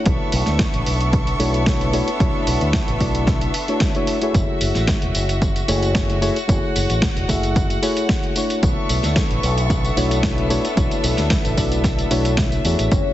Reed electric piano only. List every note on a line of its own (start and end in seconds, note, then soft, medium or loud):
0.00 1.36 A3 medium
0.00 1.37 D4 medium
0.00 1.37 E4 medium
0.00 1.37 F#4 medium
0.00 1.37 C#5 medium
1.39 1.63 A3 medium
1.39 1.63 D4 medium
1.39 1.64 E4 medium
1.39 1.64 F#4 medium
1.39 1.64 C#5 loud
1.67 1.89 A3 medium
1.67 1.89 D4 medium
1.67 1.90 E4 medium
1.67 1.90 F#4 medium
1.67 1.90 C#5 medium
1.93 2.08 A3 medium
1.93 2.08 D4 medium
1.93 2.08 E4 medium
1.93 2.08 F#4 medium
1.93 2.09 C#5 loud
2.20 2.97 A3 medium
2.20 2.97 D4 medium
2.20 2.98 E4 medium
2.20 2.98 F#4 medium
2.20 2.98 C#5 loud
3.00 3.51 A3 medium
3.00 3.51 D4 medium
3.00 3.51 E4 medium
3.00 3.51 F#4 medium
3.00 3.51 D5 medium
3.68 3.92 A3 medium
3.68 3.92 D4 medium
3.68 3.92 E4 medium
3.68 3.92 F#4 medium
3.68 3.92 C#5 medium
3.95 4.18 A3 medium
3.95 4.19 D4 medium
3.95 4.19 E4 medium
3.95 4.19 F#4 medium
3.95 4.19 C#5 medium
4.21 5.65 A3 medium
4.21 5.65 E4 medium
4.21 5.66 F#4 medium
4.21 5.66 G#4 medium
4.21 5.66 C#5 medium
5.68 5.92 A3 medium
5.68 5.92 E4 medium
5.68 5.92 F#4 medium
5.68 5.92 G#4 medium
5.68 5.92 C#5 loud
5.94 6.18 A3 medium
5.94 6.18 E4 medium
5.94 6.18 F#4 medium
5.94 6.18 G#4 medium
5.94 6.18 C#5 medium
6.21 6.36 A3 loud
6.21 6.37 E4 medium
6.21 6.37 F#4 medium
6.21 6.37 G#4 medium
6.21 6.37 C#5 loud
6.47 7.25 A3 medium
6.47 7.26 E4 medium
6.47 7.26 F#4 medium
6.47 7.26 G#4 medium
6.47 7.27 C#5 loud
7.28 7.79 A3 medium
7.28 7.79 E4 medium
7.28 7.80 F#4 medium
7.28 7.80 G#4 medium
7.28 7.80 E5 medium
7.82 8.33 A3 medium
7.82 8.33 E4 medium
7.82 8.33 F#4 medium
7.82 8.33 G#4 medium
7.82 8.34 C#5 loud
8.36 9.94 A3 medium
8.36 9.94 D4 medium
8.36 9.94 E4 medium
8.36 9.94 F#4 medium
8.36 9.95 C#5 medium
9.97 10.21 A3 medium
9.97 10.21 D4 medium
9.97 10.21 E4 medium
9.97 10.21 F#4 medium
9.97 10.21 C#5 loud
10.23 10.46 E4 medium
10.23 10.47 C#5 medium
10.50 10.65 A3 loud
10.50 10.65 D4 medium
10.50 10.65 E4 medium
10.50 10.65 F#4 medium
10.50 10.65 C#5 loud
10.76 11.54 A3 medium
10.76 11.54 D4 medium
10.76 11.54 E4 medium
10.76 11.55 F#4 medium
10.76 11.55 C#5 loud
11.57 12.08 A3 medium
11.57 12.08 D4 medium
11.57 12.08 E4 medium
11.57 12.08 F#4 medium
11.57 12.08 D5 medium
12.11 12.62 A3 medium
12.11 12.62 D4 medium
12.11 12.62 E4 medium
12.11 12.62 F#4 medium
12.11 12.62 C#5 loud
12.64 13.13 A3 medium
12.64 13.13 E4 medium
12.64 13.13 F#4 medium
12.64 13.13 G#4 medium
12.64 13.13 C#5 medium